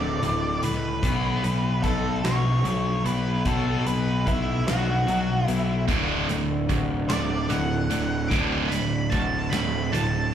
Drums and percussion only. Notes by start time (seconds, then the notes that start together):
0.23 closed hi-hat
0.63 closed hi-hat
1.03 kick, closed hi-hat
1.44 closed hi-hat
1.84 kick, closed hi-hat
2.25 snare, closed hi-hat
2.65 closed hi-hat
3.06 closed hi-hat
3.45 kick, closed hi-hat
3.87 closed hi-hat
4.27 kick, closed hi-hat
4.68 snare, closed hi-hat
5.08 closed hi-hat
5.48 closed hi-hat
5.89 kick, closed hi-hat
6.29 closed hi-hat
6.69 kick, closed hi-hat
7.10 snare, closed hi-hat
7.50 closed hi-hat
7.91 closed hi-hat
8.31 kick, closed hi-hat
8.72 closed hi-hat
9.12 kick, closed hi-hat
9.53 snare, closed hi-hat
9.94 closed hi-hat